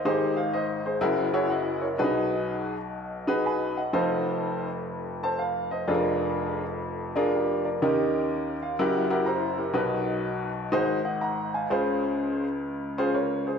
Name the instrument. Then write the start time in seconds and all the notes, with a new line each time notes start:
upright piano
Already playing: D#5
0.05 G#1 G#2 D#4 G4 G#4 C5
0.37 F5
0.53 C5 D#5
0.86 G#4 C5
1.01 F#1 F#2 E4 F#4 G#4 A#4
1.33 E4 F#4 G#4 C#5
1.50 D#5 F#5
1.82 A#4 C#5
1.98 B1 B2 D4 F#4 G#4 B4
2.04 D#4
3.27 D#4 F#4 G#4 B4
3.46 G#5 B5
3.77 D#5 F#5
3.93 F1 F2 D#4 F4 A4 C5
5.23 A4 C5 A5
5.39 F5
5.71 C5 D#5
5.88 F1 F2 D4 F4 G#4 A4
5.94 A#4
7.16 D4 F4 G#4 A#4
7.33 G4 A#4
7.65 A#4 D5
7.82 D#2 D#3 C#4 D#4 G4 A#4
8.62 F5
8.79 F#1 F#2 E4 F#4 G4 A#4 F#5
9.10 E4 F#4 G4 A#4
9.26 C5 A#5
9.58 G4 A#4
9.73 B1 B2 D#4 F#4 A#4 B4
10.72 G#1 G#2 D#4 F#4 G#4 C5
11.05 D#5 F#5
11.21 F#5 A#5
11.54 F5 G#5
11.70 C#2 C#3 C#4 F4 G#4 C5
12.98 C#4 F4 G#4 C5
13.14 A#4 C#5
13.47 G#4 C5